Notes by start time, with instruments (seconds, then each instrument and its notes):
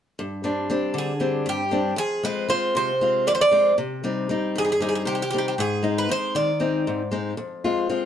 0.19 steel-string acoustic guitar G2
0.44 steel-string acoustic guitar G3 C4 D4
0.70 steel-string acoustic guitar G3 C4 D4
0.94 steel-string acoustic guitar D3
0.98 bouzouki G#4
1.20 steel-string acoustic guitar G3 C4 D4
1.46 steel-string acoustic guitar G2, bouzouki G4
1.71 steel-string acoustic guitar G3 C4 D4
1.96 steel-string acoustic guitar F2, bouzouki G#4
2.23 steel-string acoustic guitar G#3 C4 F4, bouzouki B4
2.48 steel-string acoustic guitar G#3 C4 F4, bouzouki C5
2.75 steel-string acoustic guitar C3, bouzouki C5
3.01 steel-string acoustic guitar G#3 C4 F4
3.27 steel-string acoustic guitar F2, bouzouki D5
3.35 bouzouki C5
3.41 bouzouki D5
3.51 steel-string acoustic guitar G#3 C4 F4
3.78 steel-string acoustic guitar C3
4.04 steel-string acoustic guitar G3 C4 D#4
4.29 steel-string acoustic guitar G3 C4 D#4
4.56 steel-string acoustic guitar G2, bouzouki G#4
4.65 bouzouki G#4
4.72 bouzouki G#4
4.80 steel-string acoustic guitar G3 C4 D#4, bouzouki G#4
4.89 bouzouki G#4
4.95 bouzouki G#4
5.05 steel-string acoustic guitar C3, bouzouki G4
5.15 bouzouki G4
5.22 bouzouki G4
5.31 steel-string acoustic guitar G3 C4 D#4, bouzouki G4
5.38 bouzouki G4
5.48 bouzouki G4
5.58 steel-string acoustic guitar G#2, bouzouki G#4
5.83 steel-string acoustic guitar G#3 C4 D#4
5.98 bouzouki B4
6.09 steel-string acoustic guitar G#3 C4 D#4, bouzouki C5
6.35 steel-string acoustic guitar D#3, bouzouki D5
6.60 steel-string acoustic guitar G#3 C4 D#4
6.87 steel-string acoustic guitar G#2
7.11 steel-string acoustic guitar G#3 C4 D#4
7.37 steel-string acoustic guitar F2
7.64 steel-string acoustic guitar G#3 C4 F4
7.89 steel-string acoustic guitar G#3 C4 F4